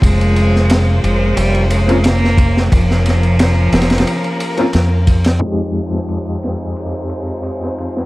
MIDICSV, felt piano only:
0, 0, Header, 1, 2, 480
1, 0, Start_track
1, 0, Key_signature, -4, "minor"
1, 0, Tempo, 674157
1, 16, Time_signature, 4, 2, 24, 8
1, 5735, End_track
2, 0, Start_track
2, 0, Title_t, "Felt piano"
2, 0, Program_c, 0, 0
2, 1330, Note_on_c, 0, 58, 82
2, 1339, Note_on_c, 0, 60, 73
2, 1346, Note_on_c, 0, 61, 77
2, 1358, Note_on_c, 0, 65, 90
2, 1394, Note_off_c, 0, 58, 0
2, 1398, Note_off_c, 0, 60, 0
2, 1402, Note_off_c, 0, 61, 0
2, 1407, Note_off_c, 0, 65, 0
2, 3258, Note_on_c, 0, 58, 83
2, 3266, Note_on_c, 0, 60, 75
2, 3273, Note_on_c, 0, 61, 79
2, 3281, Note_on_c, 0, 65, 89
2, 3318, Note_off_c, 0, 58, 0
2, 3321, Note_off_c, 0, 60, 0
2, 3325, Note_off_c, 0, 61, 0
2, 3329, Note_off_c, 0, 65, 0
2, 3840, Note_on_c, 0, 41, 64
2, 3854, Note_on_c, 0, 56, 59
2, 3864, Note_on_c, 0, 60, 58
2, 3879, Note_on_c, 0, 63, 55
2, 3889, Note_on_c, 0, 67, 69
2, 5735, Note_off_c, 0, 41, 0
2, 5735, Note_off_c, 0, 56, 0
2, 5735, Note_off_c, 0, 60, 0
2, 5735, Note_off_c, 0, 63, 0
2, 5735, Note_off_c, 0, 67, 0
2, 5735, End_track
0, 0, End_of_file